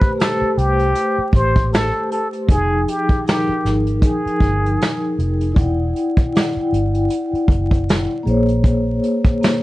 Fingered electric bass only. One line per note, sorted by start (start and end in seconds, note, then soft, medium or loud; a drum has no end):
0.41 muted fingered electric bass stroke soft
0.57 0.92 C2 medium
1.18 muted fingered electric bass stroke soft
1.33 1.90 A1 medium
2.49 2.84 F1 medium
3.49 muted fingered electric bass stroke soft
3.65 4.00 G#1 medium
4.26 muted fingered electric bass stroke soft
4.41 4.76 G1 medium
5.18 5.53 F1 medium
5.57 5.92 E1 loud
6.56 muted fingered electric bass stroke soft
6.72 7.07 G1 medium
7.33 muted fingered electric bass stroke soft
7.48 8.06 F#1 medium
8.26 8.99 A#1 medium